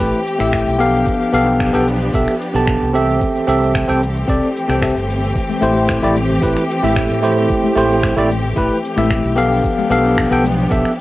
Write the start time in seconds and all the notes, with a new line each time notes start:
Already playing: E3 A3 C4 G4
0.00 A1 A3 E4 G4 B4, kick, shaker
0.14 shaker
0.27 shaker
0.39 A1 A3 E4 G4 E5, finger snap, shaker
0.53 finger snap, kick, shaker
0.67 B1, shaker
0.79 F3 B3 D4 G4 A4 F5, shaker
0.95 shaker
1.07 kick, shaker
1.22 shaker
1.33 B1 B3 G4 A4 F5, shaker
1.48 shaker
1.60 finger snap, kick, shaker
1.73 B1 B3 G4 A4 G5, shaker
1.88 shaker
2.02 shaker
2.13 B1 B3 G4 A4 E5, kick, shaker
2.28 finger snap, shaker
2.42 shaker
2.54 B1 B3 G4 A4 A5, shaker
2.68 finger snap, kick, shaker
2.82 C2
2.94 E3 A3 C4 G4 A4 E5, shaker
3.09 shaker
3.21 kick, shaker
3.36 shaker
3.47 C2 C4 G4 A4 E5, shaker
3.63 shaker
3.75 finger snap, kick, shaker
3.88 C2 C4 G4 A4 G5, shaker
4.03 shaker
4.17 shaker
4.28 C2 C4 G4 A4 D5, kick, shaker
4.44 shaker
4.57 shaker
4.68 C2 C4 G4 A4 G5, finger snap, shaker
4.81 C4 G4 A4 E5, finger snap, kick, shaker
4.96 G1, shaker
5.10 shaker
5.24 shaker
5.36 kick, shaker
5.49 high conga, shaker
5.61 A1 A3 E4 G4 C5, shaker
5.77 shaker
5.89 finger snap, kick, shaker
6.02 A1 A3 E4 G4 D5, low conga, shaker
6.16 high conga, shaker
6.30 low conga, shaker
6.41 A3 E4 G4 B4, kick, shaker
6.57 finger snap, shaker
6.70 shaker
6.82 A1 A3 E4 G4 E5, high conga, shaker
6.96 finger snap, kick, shaker
7.10 A2
7.22 A3 E4 G4 C5, shaker
7.38 shaker
7.50 kick, shaker
7.63 high conga, shaker
7.75 A1 A3 E4 G4 C5, shaker
7.91 shaker
8.03 finger snap, kick, shaker
8.16 A1 A3 E4 G4 D5, low conga, shaker
8.30 high conga, shaker
8.44 low conga, shaker
8.56 A3 E4 G4 B4, kick, shaker
8.72 shaker
8.85 shaker
8.96 A1 A3 E4 G4 E5, finger snap, high conga, shaker
9.10 finger snap, kick, shaker
9.24 B1, shaker
9.36 F3 B3 D4 G4 A4 F5, shaker
9.52 shaker
9.64 kick, shaker
9.78 high conga, shaker
9.90 B1 B3 G4 A4 F5, shaker
10.06 shaker
10.18 finger snap, kick, shaker
10.31 B1 B3 G4 A4 G5, low conga, shaker
10.44 high conga, shaker
10.59 low conga, shaker
10.70 B1 B3 G4 A4 E5, kick, shaker
10.85 finger snap, shaker